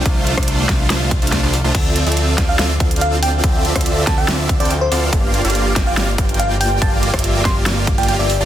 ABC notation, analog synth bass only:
X:1
M:4/4
L:1/16
Q:1/4=142
K:Dm
V:1 name="Analog synth bass" clef=bass
C,,3 C,,3 C,,2 C,,3 C,,2 C,,2 C,, | D,,3 D,,3 D,,2 D,,2 D,,6 | D,,3 D,,3 D,,2 D,,3 D,,3 D,,2 | G,,,3 G,,,3 G,,,2 G,,,2 G,,,6 |
G,,,3 G,,,3 G,,,2 G,,,3 G,,,2 G,,,2 G,,, |]